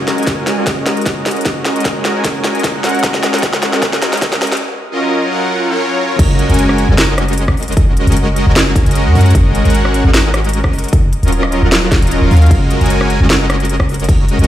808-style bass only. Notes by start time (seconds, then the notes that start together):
6.19 F#1
6.50 F#1
6.89 F#1
8.07 F#1
8.47 F#1
8.86 F#1
9.06 F#2
9.15 F#2
9.35 G#1
9.65 G#1
10.05 G#1
11.23 D#1
11.63 D#1
12.02 D#1
12.22 D#1
12.31 D#2
12.81 F#1
13.21 F#1
14.39 F#1